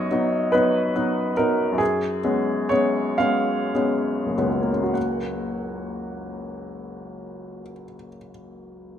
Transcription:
0.00 1.72 F#2 soft
0.00 0.11 F#3 soft
0.00 0.12 B3 soft
0.00 0.12 D#4 soft
0.00 0.52 C#5 medium
0.00 1.82 D#5 medium
0.11 0.49 F#3 soft
0.11 0.49 B3 soft
0.11 0.50 D#4 soft
0.52 0.91 F#3 soft
0.52 0.91 B3 soft
0.52 0.91 D#4 soft
0.52 1.36 B4 medium
0.95 1.33 F#3 soft
0.95 1.33 B3 soft
0.95 1.33 D#4 soft
1.37 1.76 F#3 soft
1.37 1.76 B3 soft
1.37 1.77 D#4 soft
1.37 1.80 A#4 medium
1.72 2.19 F#2 soft
1.78 2.70 G#4 medium
2.24 2.66 G#3 soft
2.24 2.67 B3 soft
2.24 2.67 C#4 soft
2.69 3.16 G#3 soft
2.69 3.16 B3 soft
2.69 3.16 C#4 soft
2.69 3.19 C#5 medium
3.18 3.71 G#3 soft
3.18 3.71 B3 soft
3.18 3.71 C#4 soft
3.18 4.94 F5 medium
3.75 4.34 G#3 soft
3.75 4.34 B3 soft
3.75 4.34 C#4 soft
4.27 7.61 F#1 soft
4.38 7.72 C#2 soft
4.38 4.91 G#3 soft
4.38 4.91 B3 soft
4.38 4.71 C#4 soft
4.49 7.84 F#3 soft
4.61 7.95 A#3 soft
4.72 8.07 C#4 soft
4.83 8.18 F#4 soft
4.94 8.28 F#5 soft

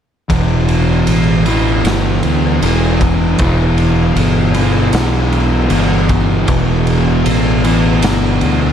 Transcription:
0.29 1.03 E1 loud
0.29 1.47 E2 medium
0.29 1.43 B2 medium
0.29 1.45 E3 medium
0.29 kick loud
0.29 ride medium
0.68 ride medium
1.07 1.80 A1 medium
1.07 ride medium
1.46 2.61 E2 medium
1.46 2.60 B2 medium
1.46 2.63 E3 medium
1.46 ride medium
1.84 2.19 G1 medium
1.84 snare loud
1.84 ride medium
2.23 2.59 D2 medium
2.23 ride medium
2.62 3.35 E1 medium
2.62 3.39 E2 medium
2.62 3.37 B2 medium
2.62 3.41 E3 medium
2.62 ride medium
3.01 kick medium
3.01 ride medium
3.38 4.12 E1 medium
3.38 4.57 E2 medium
3.38 4.53 B2 medium
3.38 4.55 E3 loud
3.38 kick loud
3.38 ride medium
3.78 ride medium
4.16 4.89 G1 medium
4.16 ride medium
4.54 5.70 E2 medium
4.54 5.70 B2 medium
4.54 5.72 E3 medium
4.54 ride medium
4.93 5.67 B1 medium
4.93 snare loud
4.93 ride medium
5.32 ride medium
5.70 6.44 G1 medium
5.70 6.47 E2 medium
5.70 6.47 B2 medium
5.70 6.49 E3 medium
5.70 ride medium
6.09 kick medium
6.09 ride medium
6.47 7.22 E1 medium
6.47 7.65 E2 medium
6.47 7.62 B2 medium
6.47 7.64 E3 medium
6.47 kick loud
6.47 ride medium
6.87 ride medium
7.26 7.99 A1 medium
7.26 ride medium
7.64 8.72 E2 medium
7.64 8.72 B2 medium
7.64 8.72 E3 medium
7.64 ride medium
8.02 8.39 G1 medium
8.02 snare loud
8.02 ride loud
8.41 8.72 D2 medium
8.41 ride medium

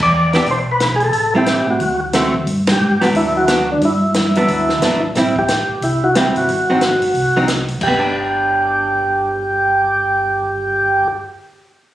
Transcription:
0.00 0.43 E2 medium
0.00 0.33 D5 loud
0.00 kick medium
0.33 0.46 E3 soft
0.33 0.46 B3 medium
0.33 0.46 D4 medium
0.33 0.47 G4 medium
0.33 0.48 D5 medium
0.33 snare soft
0.33 open hi-hat soft
0.46 1.10 B1 medium
0.46 open hi-hat soft
0.51 0.59 C5 medium
0.71 0.93 B4 medium
0.80 snare medium
0.80 closed hi-hat medium
0.96 1.03 G#4 medium
1.00 open hi-hat soft
1.04 1.34 A4 loud
1.13 1.63 A1 medium
1.13 open hi-hat soft
1.35 1.78 G3 medium
1.35 1.79 C4 medium
1.35 1.79 E4 medium
1.35 1.67 G4 medium
1.46 snare medium
1.46 closed hi-hat medium
1.67 1.79 A2 medium
1.67 2.00 F#4 medium
1.80 2.44 D2 medium
1.80 open hi-hat soft
2.13 2.33 D3 medium
2.13 2.33 A3 medium
2.13 2.33 C4 medium
2.13 2.33 F#4 medium
2.13 snare medium
2.13 closed hi-hat medium
2.34 kick medium
2.46 2.78 G2 medium
2.46 open hi-hat soft
2.67 snare medium
2.67 ride medium
2.72 3.04 G4 medium
2.80 3.12 G#2 medium
3.01 3.45 F#3 medium
3.01 3.45 B3 medium
3.01 3.46 D4 medium
3.01 3.09 F#4 medium
3.01 snare soft
3.01 open hi-hat soft
3.13 3.77 D2 medium
3.13 3.37 E4 loud
3.13 open hi-hat soft
3.37 3.70 F#4 loud
3.48 3.66 F#3 medium
3.48 3.67 B3 medium
3.48 3.67 D4 medium
3.48 snare medium
3.48 closed hi-hat medium
3.72 3.82 D4 medium
3.81 4.44 G2 medium
3.81 open hi-hat soft
3.85 5.00 E4 medium
4.14 snare medium
4.14 closed hi-hat medium
4.35 4.80 F#3 medium
4.35 4.80 B3 medium
4.35 4.80 D4 medium
4.35 open hi-hat soft
4.48 4.79 D2 medium
4.48 open hi-hat soft
4.69 snare soft
4.81 5.12 G#1 medium
4.81 5.01 F#3 medium
4.81 5.01 B3 medium
4.81 5.01 D4 medium
4.81 snare medium
4.81 closed hi-hat medium
5.15 5.65 A1 medium
5.15 5.34 G3 medium
5.15 5.35 C4 medium
5.15 5.35 E4 medium
5.15 snare soft
5.15 open hi-hat soft
5.36 5.85 G4 medium
5.36 kick medium
5.48 snare medium
5.48 closed hi-hat medium
5.69 5.76 A1 soft
5.81 6.31 C2 medium
5.81 6.04 E4 medium
5.81 open hi-hat soft
6.04 6.15 F#4 medium
6.15 6.49 G3 medium
6.15 6.49 C4 medium
6.15 6.49 E4 medium
6.15 6.26 G4 medium
6.15 snare medium
6.15 closed hi-hat medium
6.35 6.47 G1 medium
6.35 7.45 F#4 loud
6.35 open hi-hat soft
6.48 6.98 G#1 medium
6.48 open hi-hat soft
6.70 6.81 F#3 medium
6.70 6.81 C4 medium
6.70 6.81 D#4 medium
6.81 snare medium
6.81 closed hi-hat soft
7.02 7.14 G1 medium
7.02 open hi-hat soft
7.14 7.78 C2 medium
7.14 open hi-hat soft
7.37 7.48 F#3 medium
7.37 7.48 C4 medium
7.37 7.48 D#4 medium
7.48 snare medium
7.48 closed hi-hat medium
7.68 open hi-hat soft
7.81 11.05 G1 medium
7.81 11.08 G4 medium
7.81 kick medium
7.81 crash medium
7.88 11.16 B3 medium
7.99 11.27 D4 medium

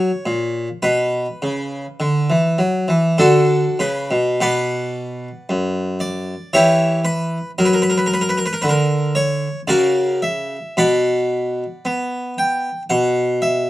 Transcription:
0.00 0.66 C#5 medium
0.26 0.67 A#2 soft
0.82 1.26 B2 medium
0.82 2.83 B4 medium
1.42 1.85 C#3 soft
2.00 2.28 D3 medium
2.30 2.58 E3 soft
2.58 2.87 F#3 soft
2.88 3.17 E3 soft
3.18 3.63 D3 soft
3.18 3.77 D4 soft
3.18 3.77 F#4 medium
3.18 3.80 A4 medium
3.79 4.09 C#3 soft
3.79 4.41 B4 medium
4.11 4.39 B2 soft
4.41 5.28 B2 medium
4.41 5.99 B4 medium
4.41 5.99 D5 medium
4.41 6.02 F#5 medium
5.49 6.33 F#2 soft
6.00 6.53 D5 medium
6.53 7.37 E3 soft
6.53 7.03 E4 medium
6.53 7.03 G4 medium
6.53 6.98 C#5 medium
7.05 7.50 B4 medium
7.58 8.42 F#3 medium
7.58 7.66 A#4 medium
7.65 7.74 B4 medium
7.73 7.82 A#4 medium
7.82 7.90 B4 medium
7.90 7.98 A#4 medium
7.98 8.06 B4 medium
8.06 8.14 A#4 medium
8.14 8.21 B4 medium
8.21 8.29 A#4 medium
8.29 8.37 B4 medium
8.38 8.45 A#4 medium
8.46 8.53 B4 medium
8.53 8.61 A#4 medium
8.62 9.47 D3 medium
8.62 8.69 B4 medium
8.69 9.16 A#4 medium
9.15 9.59 C#5 medium
9.68 10.56 C#3 medium
9.68 10.19 F#4 medium
9.68 10.19 A#4 medium
9.68 10.22 D5 medium
10.22 10.78 E5 medium
10.77 11.63 B2 medium
10.77 12.34 D5 medium
10.77 12.34 F#5 medium
10.77 12.37 B5 loud
11.85 12.69 B3 medium
12.38 12.82 G5 medium
12.90 13.70 B2 medium
12.90 13.42 F#5 medium
13.42 13.70 E5 medium

